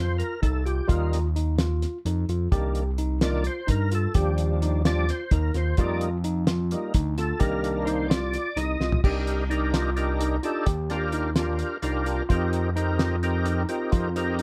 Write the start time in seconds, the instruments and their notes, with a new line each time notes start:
Already playing: analog synth bass F2, tine electric piano F4, tonewheel organ C5
0.18 tonewheel organ A#4, closed hi-hat
0.42 analog synth bass C2, tine electric piano D#4, tonewheel organ A4, kick, closed hi-hat
0.65 tine electric piano F4, tonewheel organ G4, closed hi-hat
0.87 analog synth bass D#2, tonewheel organ G3 A#3 D#4 F4, tine electric piano F4, kick, closed hi-hat
1.13 snare, closed hi-hat
1.36 tine electric piano D#4, closed hi-hat
1.58 tine electric piano F4, snare, closed hi-hat
1.82 snare, closed hi-hat
2.05 analog synth bass F2, tine electric piano D#4, closed hi-hat
2.29 analog synth bass F2, tine electric piano F4, closed hi-hat
2.52 analog synth bass C2, tonewheel organ D#3 A#3 D4, tine electric piano G4, kick, closed hi-hat
2.75 closed hi-hat
2.98 tine electric piano D#4, closed hi-hat
3.21 tonewheel organ D#3 A#3 D4 D5, tine electric piano F4, snare, closed hi-hat
3.44 tonewheel organ C5, closed hi-hat
3.67 analog synth bass G2, tine electric piano D#4, tonewheel organ A#4, kick, closed hi-hat
3.92 tine electric piano F4, tonewheel organ A4, closed hi-hat
4.14 analog synth bass D#2, tonewheel organ F3 G3 D4 G4, tine electric piano G4, kick, closed hi-hat
4.38 closed hi-hat
4.62 tine electric piano D#4, snare, closed hi-hat
4.85 tonewheel organ F3 G3 D4 D5, tine electric piano F4, snare, closed hi-hat
5.09 tonewheel organ C5, snare, closed hi-hat
5.31 analog synth bass D#2, tine electric piano D#4, tonewheel organ A#4, kick, closed hi-hat
5.54 analog synth bass D#2, tine electric piano F4, tonewheel organ C5, snare, closed hi-hat
5.77 analog synth bass F2, tonewheel organ G3 A#3 D#4 D5, tine electric piano F4, kick, closed hi-hat
6.01 closed hi-hat
6.24 tine electric piano D#4, closed hi-hat
6.47 tine electric piano F4, snare, closed hi-hat
6.71 tonewheel organ G3 A#3 D#4, closed hi-hat
6.94 analog synth bass D2, tine electric piano D#4, kick, closed hi-hat
7.18 tine electric piano F4, tonewheel organ A4, snare, closed hi-hat
7.39 analog synth bass C2, tonewheel organ D#3 A#3 D4 A#4, tine electric piano G4, kick, closed hi-hat
7.64 closed hi-hat
7.85 tine electric piano D#4, tonewheel organ C5, closed hi-hat
8.08 tine electric piano F4, tonewheel organ D5, snare, closed hi-hat
8.33 snare, closed hi-hat
8.56 analog synth bass C2, tine electric piano D#4, tonewheel organ D#5, snare, closed hi-hat
8.80 analog synth bass C2, tine electric piano F4, snare
8.92 floor tom
9.04 analog synth bass C2, tonewheel organ D4 D#4 G4 A#4, tine electric piano G4, kick, crash
9.27 closed hi-hat
9.50 tonewheel organ D4 D#4 G4 A#4, tine electric piano D#4, closed hi-hat
9.74 tine electric piano F4, snare, closed hi-hat
9.96 tonewheel organ D4 D#4 G4 A#4, closed hi-hat
10.20 tine electric piano D#4, closed hi-hat
10.43 tonewheel organ D4 D#4 G4 A4, tine electric piano F4, closed hi-hat
10.66 analog synth bass D#2, tine electric piano G4, kick, closed hi-hat
10.90 tonewheel organ D4 F4 G4 A#4, snare, closed hi-hat
11.12 tine electric piano D#4, closed hi-hat
11.36 tonewheel organ D4 F4 G4 A#4, tine electric piano F4, snare, closed hi-hat
11.59 closed hi-hat
11.82 analog synth bass C2, tonewheel organ D4 F4 G4 A#4, tine electric piano D#4, closed hi-hat
12.06 tine electric piano F4, closed hi-hat
12.29 analog synth bass F2, tonewheel organ C4 D#4 G4 A#4, tine electric piano F4, kick, closed hi-hat
12.53 closed hi-hat
12.75 tonewheel organ C4 D#4 G4 A#4, tine electric piano D#4, closed hi-hat
12.99 tine electric piano F4, snare, closed hi-hat
13.23 tonewheel organ C4 D#4 G4 A#4, closed hi-hat
13.46 tine electric piano D#4, closed hi-hat
13.69 tonewheel organ C4 D#4 G4 A#4, tine electric piano F4, closed hi-hat
13.92 analog synth bass F2, tine electric piano F4, kick, closed hi-hat
14.16 tonewheel organ C4 D#4 G4 A#4, closed hi-hat
14.39 tine electric piano D#4, closed hi-hat